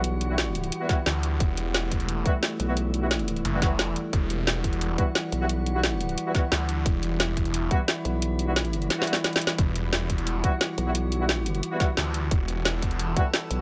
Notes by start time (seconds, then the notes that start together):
Already playing: B1 E3 G3 F#4
0.04 closed hi-hat
0.21 closed hi-hat
0.30 G3 B3 E4 F#4
0.38 snare, closed hi-hat
0.55 closed hi-hat
0.64 closed hi-hat
0.72 closed hi-hat
0.81 G3 B3 E4 F#4
0.89 G3 B3 E4 F#4, kick, snare, closed hi-hat
1.06 D2, snare, closed hi-hat
1.23 closed hi-hat
1.40 E1 A3, kick, closed hi-hat
1.57 closed hi-hat
1.74 snare, closed hi-hat
1.91 kick, closed hi-hat
2.00 closed hi-hat
2.09 closed hi-hat
2.26 G3 B3 E4 F#4, kick, closed hi-hat
2.43 snare, closed hi-hat
2.60 B1, closed hi-hat
2.68 G3 B3 E4 F#4
2.77 closed hi-hat
2.94 closed hi-hat
3.02 G3 B3 E4 F#4
3.11 snare, closed hi-hat
3.19 closed hi-hat
3.28 closed hi-hat
3.36 closed hi-hat
3.45 F#1, closed hi-hat
3.53 G3 B3 E4 F#4
3.62 G3 B3 E4 F#4, kick, snare, closed hi-hat
3.79 snare, closed hi-hat
3.96 closed hi-hat
4.13 E1 F#4, kick, closed hi-hat
4.30 closed hi-hat
4.47 snare, closed hi-hat
4.64 kick, closed hi-hat
4.73 closed hi-hat
4.81 closed hi-hat
4.98 G3 B3 E4 F#4, kick, closed hi-hat
5.15 snare, closed hi-hat
5.32 B1, closed hi-hat
5.41 G3 B3 E4 F#4
5.49 closed hi-hat
5.66 closed hi-hat
5.75 G3 B3 E4 F#4
5.83 snare, closed hi-hat
6.01 closed hi-hat
6.09 closed hi-hat
6.18 closed hi-hat
6.26 G3 B3 E4 F#4
6.35 G3 B3 E4 F#4, kick, snare, closed hi-hat
6.52 D2, snare, closed hi-hat
6.69 closed hi-hat
6.86 E1 E4, kick, closed hi-hat
7.03 closed hi-hat
7.20 snare, closed hi-hat
7.37 kick, closed hi-hat
7.45 closed hi-hat
7.54 closed hi-hat
7.71 G3 B3 E4 F#4, kick, closed hi-hat
7.88 snare, closed hi-hat
8.05 B1, closed hi-hat
8.22 closed hi-hat
8.39 closed hi-hat
8.48 G3 B3 E4 F#4
8.56 snare, closed hi-hat
8.65 closed hi-hat
8.73 closed hi-hat
8.82 closed hi-hat
8.90 snare, closed hi-hat
8.99 G3 B3 E4 F#4, snare
9.07 G3 B3 E4 F#4, closed hi-hat
9.13 snare, closed hi-hat
9.24 snare, closed hi-hat
9.33 snare, closed hi-hat
9.41 closed hi-hat
9.47 snare
9.58 E1 F#4, kick, closed hi-hat
9.76 closed hi-hat
9.93 snare, closed hi-hat
10.10 kick, closed hi-hat
10.18 closed hi-hat
10.27 closed hi-hat
10.44 G3 B3 E4 F#4, kick, closed hi-hat
10.61 snare, closed hi-hat
10.78 B1, closed hi-hat
10.86 G3 B3 E4 F#4
10.95 closed hi-hat
11.12 closed hi-hat
11.20 G3 B3 E4 F#4
11.29 snare, closed hi-hat
11.46 closed hi-hat
11.55 closed hi-hat
11.63 closed hi-hat
11.72 G3 B3 E4 F#4
11.80 G3 B3 E4 F#4, kick, snare, closed hi-hat
11.97 D2, snare, closed hi-hat
12.14 closed hi-hat
12.31 E1 A4, kick, closed hi-hat
12.48 closed hi-hat
12.65 snare, closed hi-hat
12.82 kick, closed hi-hat
12.91 closed hi-hat
12.99 closed hi-hat
13.16 G3 B3 E4 F#4, kick, closed hi-hat
13.34 snare, closed hi-hat
13.51 B1, closed hi-hat